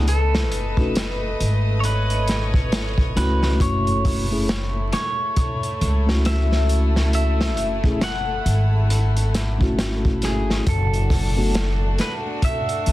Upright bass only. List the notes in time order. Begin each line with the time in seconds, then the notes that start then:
Already playing: C#2
0.52 F#1
1.40 G#1
3.16 C#2
3.60 F#1
5.81 C#2
7.57 F#1
8.46 G#1
10.67 F#1
12.87 C#2